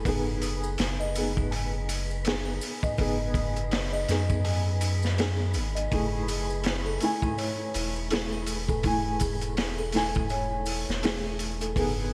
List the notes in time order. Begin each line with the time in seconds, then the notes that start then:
Already playing: B4
0.05 F#1 B3 D#4 G#4, kick, open hi-hat, maracas
0.42 B4, open hi-hat, maracas
0.64 maracas
0.78 F#1 D#4, snare, open hi-hat, maracas
1.00 D#5, triangle
1.15 B3 D#4 G#4, open hi-hat, maracas
1.36 D#4, kick, maracas
1.51 G#5, open hi-hat, maracas
1.88 D#4, open hi-hat, maracas
2.11 maracas
2.25 B3 D#4 G#4 B4, snare, open hi-hat, maracas
2.45 D#4, triangle
2.61 open hi-hat, maracas
2.83 D#5, kick, maracas
2.98 F#1 B3 D#4 G#4, kick, open hi-hat, maracas
3.34 B4, kick, open hi-hat, maracas
3.56 closed hi-hat, maracas
3.71 D#4, snare, open hi-hat, maracas
3.93 D#5, triangle
4.08 F#2 B3 D#4 G#4, snare, open hi-hat, maracas
4.29 D#4, kick, maracas
4.44 G#5, open hi-hat, maracas
4.81 D#4, open hi-hat, maracas
5.03 snare, maracas
5.18 B3 D#4 G#4 B4, snare, open hi-hat, maracas
5.39 D#4
5.54 G#1, open hi-hat, maracas
5.75 D#5, closed hi-hat, maracas
5.91 F#1 A3 E4 G#4, kick, open hi-hat, maracas
6.28 G#4, open hi-hat, maracas
6.50 maracas
6.64 E4, snare, open hi-hat, maracas
6.86 A4, triangle
7.00 A3 E4 G#5, open hi-hat, maracas
7.22 E4, kick, maracas
7.38 C#5, open hi-hat, maracas
7.74 E1 E4, open hi-hat, maracas
7.96 maracas
8.10 A3 E4 G#4, snare, open hi-hat, maracas
8.32 E4, triangle
8.46 open hi-hat, maracas
8.69 A4, kick, maracas
8.83 A3 E4 G#5, kick, open hi-hat, maracas
9.20 G#4, kick, open hi-hat, maracas
9.41 closed hi-hat, maracas
9.57 E4, snare, open hi-hat, maracas
9.78 A4, triangle
9.92 A3 E4 G#5, snare, open hi-hat, maracas
10.15 E4, kick, maracas
10.29 C#5, open hi-hat, maracas
10.66 E4, open hi-hat, maracas
10.88 E1, snare, maracas
11.03 A3 E4 G#4, snare, open hi-hat, maracas
11.25 E4
11.39 open hi-hat, maracas
11.61 A4, closed hi-hat, maracas
11.76 F#1 B3 D#4 G#4, kick, open hi-hat, maracas